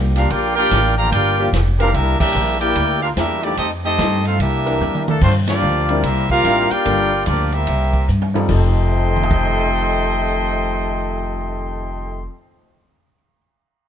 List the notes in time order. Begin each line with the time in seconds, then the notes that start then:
Already playing: C2 F3 A#3 D4 G4
0.15 A#3 D4 F4 G4 A#4 F5, snare, ride
0.30 A#1 A#3 D4 F4 G4 A#4 D5 G5, ride
0.56 A#3 D4 F4 G4 A#4 D5 G5
0.71 A1, snare, hi-hat pedal, ride
0.97 D3 F3 A#3 G4 D5 F5 A#5
1.12 G1 A#3 D4 F4 G4 A#4 D5 G5, ride
1.39 F3 A#3 D4 G4
1.53 F1, snare, hi-hat pedal, ride
1.79 E3 A#3 C4 D4 F4 G4 A#4 F5, ride
1.94 C2 G3 A#3 D4 E4 G4 A#4 E5, ride
2.19 G3 A#3 D4 E4 G4 A#4 E5, kick, crash
2.35 A#1, hi-hat pedal
2.60 A#3 E4 G4 A#4 D5 G5, ride
2.75 D2, ride
3.02 D4 F4 G4 A#4 F5
3.16 E2 G3 A#3 D4 E4 G4 A#4 E5, snare, hi-hat pedal, ride
3.43 F3 G3 A3 A#3 D4 D#4 E4 G4 D5, ride
3.57 F2 A3 C4 D#4 G4 A4 D#5, ride
3.84 A3 C4 D#4 G4 A4 D#5
3.98 G2, snare, hi-hat pedal, ride
4.25 A3 C4 D#4 F4 A4 C5 F5, ride
4.39 C2 G3 A#3 D4 E4 G4 A#4 E5, ride
4.66 E3 C4 D4 A#4, ride
4.80 E2, hi-hat pedal, high tom
4.95 mid tom
5.08 A3 A#3 D4 A4, mid tom
5.21 G2 A3 C4 D4 F4 C5, kick, crash
5.47 F3 A#3 D4 F4 G4 D5, snare, ride
5.62 D2, hi-hat pedal
5.89 G3 C4 D4 E4 A#4, ride
6.03 C2 G3 A#3 C4 E4 G4 A#4 E5, ride
6.29 G3 A#3 C4 F4 G4 A#4 F5, kick
6.44 A1 G3 C4 D4 E4 A#4, hi-hat pedal, ride
6.70 A#3 D4 F4 G4 A#4 D5 G5, muted upright bass stroke, ride
6.85 G1 G3 A#3 D4 F4 A4, ride
7.26 D2 F3 A#3 D4 F4 G4 D5, hi-hat pedal, ride
7.52 G3 A#3 C4 E4 G4 A#4 E5, ride
7.67 C2, ride
7.93 kick
8.08 G2, hi-hat pedal
8.22 floor tom
8.34 G3 C4 D#4 F4 A4, floor tom
8.48 F1 F2 C3 D#3 F3 A3 D#4 G4 A4 D#5 G5 C6, kick, crash
8.91 C5
8.98 D#5
9.07 G5
9.16 C6, mid tom
9.23 D#6, floor tom
9.31 kick
9.36 G6
9.48 C7
9.61 D#7